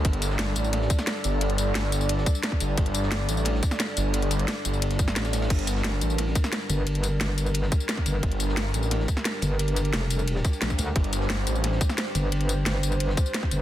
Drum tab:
CC |----------------|----------------|----------------|----------------|
RD |x-x-x-x-x-x-x-x-|x-x-x-x-x---xxx-|x-x-x-x-x-x-x-x-|x-x-x-x-x-x-xxxx|
HH |xxx-x-x-x-x-x-x-|xxx-x-x-x-x-x-x-|xxx-x-x-x-x-x-x-|xxxxx-x-xxx-x-x-|
TB |--x---xx--xx--x-|--x---xx--xx--x-|--x---xx--xx--x-|--x---xx--xx-xx-|
SD |---oo---oo-oo---|----o----o--oo--|---oo---oo-oo---|----o----ooooooo|
BD |o---------o-----|----------o--o--|o---------o-----|----------o-----|

CC |x---------------|----------------|----------------|----------------|
RD |x-x-x-x-x-x-x-x-|x-x---x-x---xxx-|x-x-x-x-x-x-x-x-|x-x-x-x-x-x-xxx-|
HH |xxx-x-x-x-x-x-x-|xxx-x-x-x-x-x-x-|xxx-x-x-x-x-x-x-|xxxxx-x-x-x-x-x-|
TB |--x---xx--xx--x-|--x---xx--xx--x-|--x---xx--xx--x-|--x---xx--xx-xx-|
SD |---oo---oo-oo---|----o----o--oo--|---oo---oo-oo---|----o----oo-ooo-|
BD |o---------o-----|----------o--o--|o---------o-----|----------o--o--|

CC |----------------|----------------|
RD |x-x-x-x-x-x-x-x-|x-x-x-x-x---xxx-|
HH |xxx-x-x-x-x-x-x-|xxx-x-x-x-x-x-x-|
TB |--x---xx--xx--x-|--x---xx--xx--x-|
SD |---oo---oo-oo---|----o----o--oo--|
BD |o---------o-----|----------o--o--|